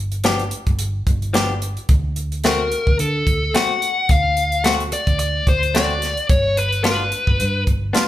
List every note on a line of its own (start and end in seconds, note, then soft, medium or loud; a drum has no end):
0.00 0.51 G1 medium
0.12 closed hi-hat soft
0.24 0.42 F3 medium
0.24 0.42 B3 medium
0.24 0.42 D4 medium
0.24 0.43 G4 medium
0.24 snare loud
0.24 closed hi-hat medium
0.39 closed hi-hat soft
0.51 closed hi-hat medium
0.67 1.00 G1 medium
0.67 kick medium
0.67 closed hi-hat soft
0.79 closed hi-hat medium
1.07 1.76 G1 medium
1.07 kick medium
1.07 closed hi-hat medium
1.22 closed hi-hat soft
1.34 1.52 F3 medium
1.34 1.52 B3 medium
1.34 1.52 D4 medium
1.34 1.53 G4 loud
1.34 snare loud
1.34 closed hi-hat medium
1.62 closed hi-hat medium
1.77 closed hi-hat soft
1.89 2.71 D2 medium
1.89 kick loud
1.89 closed hi-hat medium
2.16 closed hi-hat medium
2.32 closed hi-hat soft
2.44 2.62 A3 medium
2.44 2.62 C4 medium
2.44 2.63 F#4 medium
2.44 2.96 A#4 medium
2.44 snare loud
2.44 closed hi-hat medium
2.72 closed hi-hat medium
2.87 2.97 D2 medium
2.87 kick medium
2.99 3.22 D3 medium
2.99 3.56 A4 medium
2.99 closed hi-hat medium
3.27 3.50 D2 medium
3.27 kick medium
3.27 closed hi-hat medium
3.54 3.72 A3 medium
3.54 3.73 C4 medium
3.54 3.73 F#4 medium
3.54 4.12 F#5 loud
3.54 snare loud
3.54 closed hi-hat medium
3.82 closed hi-hat medium
4.09 4.91 D2 loud
4.09 4.67 F5 medium
4.09 kick loud
4.09 closed hi-hat medium
4.37 closed hi-hat medium
4.52 closed hi-hat soft
4.64 4.82 A3 medium
4.64 4.83 C4 medium
4.64 4.83 F#4 medium
4.64 4.72 F#5 medium
4.64 snare loud
4.64 closed hi-hat medium
4.80 closed hi-hat soft
4.92 5.18 D5 medium
4.92 closed hi-hat medium
5.07 5.40 D2 medium
5.07 kick medium
5.07 closed hi-hat soft
5.19 5.45 D5 medium
5.19 closed hi-hat medium
5.47 6.16 D2 medium
5.47 5.76 C5 medium
5.47 kick medium
5.47 closed hi-hat medium
5.63 closed hi-hat soft
5.74 5.92 A3 medium
5.74 5.93 C4 medium
5.74 5.93 F#4 medium
5.74 6.25 D5 medium
5.74 snare loud
5.74 closed hi-hat medium
6.02 snare soft
6.02 closed hi-hat medium
6.17 closed hi-hat soft
6.29 7.12 G1 medium
6.29 6.58 C#5 medium
6.29 kick loud
6.29 closed hi-hat medium
6.57 6.83 B4 medium
6.57 closed hi-hat medium
6.72 closed hi-hat soft
6.84 7.02 B3 medium
6.84 7.02 D4 medium
6.84 7.03 F4 medium
6.84 7.63 B4 medium
6.84 snare loud
6.84 closed hi-hat medium
7.12 closed hi-hat medium
7.27 7.38 G1 medium
7.27 kick medium
7.40 7.63 G2 medium
7.40 closed hi-hat medium
7.67 7.90 G1 medium
7.67 kick medium
7.67 closed hi-hat medium
7.93 8.08 B3 medium
7.93 8.08 D4 medium
7.93 8.08 F4 medium
7.93 snare loud
7.93 closed hi-hat medium